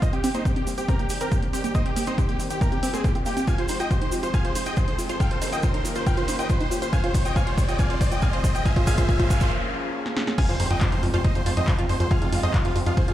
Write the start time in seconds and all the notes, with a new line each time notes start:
Already playing: G4, riser
0.02 D#3 G3 A#3 C4 C5 D#5, kick, closed hi-hat, shaker
0.13 C4 G4, closed hi-hat
0.24 C4 G4, open hi-hat, shaker
0.34 A#3 D#4 C5, closed hi-hat, shaker
0.45 C4 G4, kick, closed hi-hat, shaker
0.56 C4 G4, closed hi-hat
0.67 A#3, open hi-hat, shaker
0.78 C4 G4, closed hi-hat, shaker
0.88 C4 G4 A#4, kick, closed hi-hat, shaker
0.99 A#3 G4, closed hi-hat
1.09 C4 G4, open hi-hat, shaker
1.21 C4 G4 A#4, closed hi-hat, shaker
1.32 A#3 G4, kick, closed hi-hat, shaker
1.42 C4, closed hi-hat
1.53 C4 G4, open hi-hat, shaker
1.64 A#3 G4, closed hi-hat, shaker
1.75 C4 C5 D#5, kick, closed hi-hat, shaker
1.86 C4 G4, closed hi-hat
1.96 A#3 G4, open hi-hat, shaker
2.06 C4 D#4 C5, closed hi-hat, shaker
2.18 C4 G4, kick, closed hi-hat, shaker
2.29 A#3 G4, closed hi-hat
2.40 C4, open hi-hat, shaker
2.50 C4 G4, closed hi-hat, shaker
2.61 A#3 G4 A#4, kick, closed hi-hat, shaker
2.72 C4 G4, closed hi-hat
2.83 C4 G4, open hi-hat, shaker
2.94 A#3 C4 G#4, closed hi-hat, shaker
3.04 C4 G4, kick, closed hi-hat, shaker
3.15 C4, closed hi-hat
3.26 A#3 G4, open hi-hat, shaker
3.37 C4 G4, closed hi-hat, shaker
3.47 F3 G#3 F4 F5 G#5, kick, closed hi-hat, shaker
3.58 F4 C5, closed hi-hat
3.68 D#4 C5, open hi-hat, shaker
3.80 F4 D#5 G5, closed hi-hat, shaker
3.91 F4 C5, kick, closed hi-hat, shaker
4.01 D#4 C5, closed hi-hat
4.12 F4, open hi-hat, shaker
4.23 F4 C5, closed hi-hat, shaker
4.34 F4 F5 G#5, kick, closed hi-hat, shaker
4.45 F4 C5, closed hi-hat
4.55 D#4 C5, open hi-hat, shaker
4.66 F4 D#5 G5, closed hi-hat, shaker
4.77 F4 C5, kick, closed hi-hat, shaker
4.88 D#4 C5, closed hi-hat
4.99 F4, open hi-hat, shaker
5.09 F4 C5, closed hi-hat, shaker
5.20 D#3 A#3 C#4 F4 G4 F5 G5, kick, closed hi-hat, shaker
5.31 F4 C5, closed hi-hat
5.42 D#4 C5, open hi-hat, shaker
5.52 F4 D#5 G5, closed hi-hat, shaker
5.63 F4 C5, kick, closed hi-hat, shaker
5.74 D#4 C5, closed hi-hat
5.85 F4, open hi-hat, shaker
5.95 F4 C5, closed hi-hat, shaker
6.06 F4 F5 G5, kick, closed hi-hat, shaker
6.17 F4 C5, closed hi-hat
6.28 D#4 C5, open hi-hat, shaker
6.39 F4 D#5 G5, closed hi-hat, shaker
6.49 F4 C5, kick, closed hi-hat, shaker
6.60 D#4 C5, closed hi-hat
6.71 F4, open hi-hat, shaker
6.82 F4 C5, closed hi-hat, shaker
6.93 F3 G#3 C4 F4 F5 G#5, kick, closed hi-hat, shaker
7.04 F4 C5, closed hi-hat
7.14 D#4 C5, kick, open hi-hat, shaker
7.25 F4 D#5 G5, closed hi-hat, shaker
7.36 F4 F5 G#5, kick, closed hi-hat, shaker
7.47 F4 C5, closed hi-hat
7.58 D#4 C5, kick, open hi-hat, shaker
7.68 F4 D#5 G5, closed hi-hat, shaker
7.79 F4 F5 G#5, kick, closed hi-hat, shaker
7.90 F4 C5, closed hi-hat
8.01 D#4 C5, kick, open hi-hat, shaker
8.11 F4 D#5 G5, closed hi-hat, shaker
8.22 F4 F5 G#5, kick, closed hi-hat, shaker
8.33 F4 C5, closed hi-hat
8.44 D#4 C5, kick, open hi-hat, shaker
8.55 F4 D#5 G5, closed hi-hat, shaker
8.65 A#3 C#4 F4 G#4 F5 G#5, kick, closed hi-hat, noise sweep, shaker
8.76 F4 C5, kick, closed hi-hat
8.87 F4 F5 G#5, kick, open hi-hat, shaker
8.97 F4 C5, kick, closed hi-hat, shaker
9.09 F4 F5 G#5, kick, closed hi-hat, shaker
9.19 F4 C5, kick, closed hi-hat
9.30 F4 F5 G#5, kick, open hi-hat, shaker
9.40 F4 C5, kick, closed hi-hat, shaker
10.06 snare
10.17 snare
10.27 snare
10.38 F3 G#3 C4 F4 G4 F5 G#5, kick, closed hi-hat, crash, ride, impact
10.49 F2 F4 C5, closed hi-hat
10.60 F2 D#4 C5, open hi-hat
10.71 F2 F4 D#5 G5, closed hi-hat
10.81 F4 C5, kick, clap, closed hi-hat, ride
10.92 F2 D#4 C5, closed hi-hat
11.03 F2 F4, open hi-hat
11.14 F2 F4 C5, closed hi-hat
11.24 D#4 C5 D#5, kick, closed hi-hat, ride
11.35 F2 F4 C5, closed hi-hat
11.46 F2 F4 C5, open hi-hat
11.57 F2 D#4 C5 D#5, closed hi-hat
11.68 F4 C5, kick, clap, closed hi-hat, ride
11.79 F2 F4, closed hi-hat
11.89 F2 D#4 C5, open hi-hat
12.00 F2 F4 C5, closed hi-hat
12.11 F4 G#4 F5, kick, closed hi-hat, ride
12.22 F2 D#4 F4, closed hi-hat
12.32 F2 F4, open hi-hat
12.43 F2 F4 C5 D#5, closed hi-hat
12.54 D#4 F4, kick, clap, closed hi-hat, ride
12.65 F2 F4, closed hi-hat
12.76 F2 F4, open hi-hat
12.86 F2 D#4 F4, closed hi-hat
12.97 F4 G#4 C5, kick, closed hi-hat, ride
13.08 F2 F4, closed hi-hat